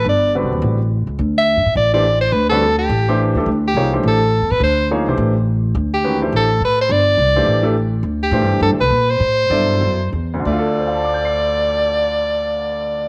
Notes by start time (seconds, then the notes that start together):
0.05 G1
0.09 D5
0.35 D3 G3 C4 F#4 B4
0.43 C2
0.53 D#2
0.62 A1
1.07 C#2
1.19 D2
1.38 E5
1.57 G2
1.66 A2
1.75 A1 D5
1.94 E3 A3 D4 G4 C5 D5
2.21 C5
2.32 D2 B4
2.50 D3 G3 C4 F#4 A4 B4
2.79 G4
2.89 A1
3.08 E3 A3 D4 G4 C5
3.35 D#2 E3 A3 D4 G4 A4
3.46 D2
3.68 G4
3.75 C2 F3 A#3 D#4 G#4 C#5
3.93 E3 A3 D4 G4 C5
4.03 A1
4.08 A4
4.42 E2
4.51 A2 B4
4.60 D2 C5
4.91 F3 A#3 D#4 G#4 C#5
5.06 C2 E3 A3 D4 G4 C5
5.17 A1
5.75 D2
5.94 G4
6.04 D#3 G#3 C#4 F#4 B4
6.22 E3 A3 D4 G4 C5
6.32 A1
6.37 A4
6.61 A2
6.65 B4
6.81 C5
6.89 G1 D5
7.17 C2
7.36 E3 A3 D4 G4 C5
7.46 A1
7.63 E3 A3 D4 G4 A4
8.03 D2
8.23 G4
8.31 A2 E3 A3 D4 G4 C5
8.41 G2
8.51 D2
8.61 G2 A4
8.71 D2
8.80 C2 B4
8.90 A#2
9.10 C5
9.20 A2
9.50 G2 B2 F#3 E4 A4 D5
9.81 F#2
10.13 E2
10.34 D2
10.40 D3
10.45 D2 A3 D5
10.52 F4
10.59 A4
10.80 C5
10.87 F5
10.95 A5
11.05 D6
11.14 G6
11.25 C7